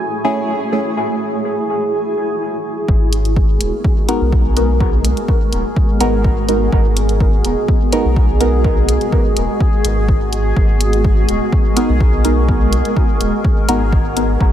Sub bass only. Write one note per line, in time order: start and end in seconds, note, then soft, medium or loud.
2.89 3.57 G#1 medium
3.60 3.70 D#1 medium
4.21 5.13 B1 loud
5.53 5.62 D#1 medium
6.01 6.69 G#1 medium
6.73 7.41 G#1 medium
7.45 7.54 D#1 medium
8.05 8.97 B1 medium
9.37 9.47 D#1 medium
9.85 10.53 G#1 medium
10.57 11.25 G#1 loud
11.29 11.38 D#1 medium
11.89 12.81 B1 medium
13.21 13.31 D#1 medium
13.68 14.37 G#1 medium
14.41 14.52 G#1 loud